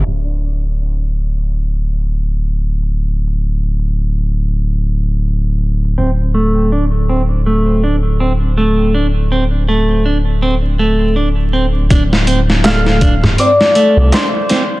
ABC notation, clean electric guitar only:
X:1
M:4/4
L:1/8
Q:"Swing 16ths" 1/4=81
K:Dm
V:1 name="Clean electric guitar"
z8 | z8 | C A, D C A, D C A, | D C A, D C A, D C |
D C A, D C A, D C |]